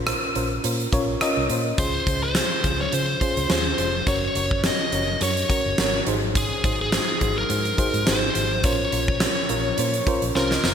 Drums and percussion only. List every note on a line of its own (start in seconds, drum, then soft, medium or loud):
0.07 cross-stick loud
0.07 closed hi-hat medium
0.35 closed hi-hat medium
0.64 closed hi-hat medium
0.80 closed hi-hat soft
0.93 kick medium
0.93 closed hi-hat medium
1.21 cross-stick loud
1.21 closed hi-hat medium
1.50 closed hi-hat medium
1.78 kick loud
1.78 closed hi-hat medium
2.07 kick loud
2.07 closed hi-hat medium
2.35 snare loud
2.35 closed hi-hat medium
2.64 kick medium
2.64 closed hi-hat medium
2.92 closed hi-hat medium
3.21 kick medium
3.21 closed hi-hat medium
3.37 closed hi-hat soft
3.50 snare loud
3.50 closed hi-hat medium
3.78 closed hi-hat medium
4.07 kick loud
4.07 closed hi-hat medium
4.35 closed hi-hat medium
4.51 kick medium
4.64 snare loud
4.64 closed hi-hat medium
4.92 closed hi-hat medium
5.21 closed hi-hat medium
5.37 closed hi-hat soft
5.50 kick medium
5.50 closed hi-hat medium
5.78 snare loud
5.78 closed hi-hat medium
6.07 closed hi-hat medium
6.35 kick loud
6.35 closed hi-hat medium
6.64 kick loud
6.64 closed hi-hat medium
6.92 snare loud
6.92 closed hi-hat medium
7.21 kick medium
7.21 closed hi-hat medium
7.50 closed hi-hat medium
7.65 closed hi-hat soft
7.78 kick medium
7.78 closed hi-hat medium
7.94 closed hi-hat medium
8.07 snare loud
8.07 closed hi-hat medium
8.35 closed hi-hat medium
8.64 kick loud
8.64 closed hi-hat medium
8.92 closed hi-hat medium
9.08 kick medium
9.20 snare loud
9.20 closed hi-hat medium
9.49 closed hi-hat medium
9.78 closed hi-hat medium
9.94 closed hi-hat soft
10.07 kick medium
10.07 closed hi-hat medium
10.22 closed hi-hat medium
10.35 snare medium
10.51 snare medium
10.64 snare medium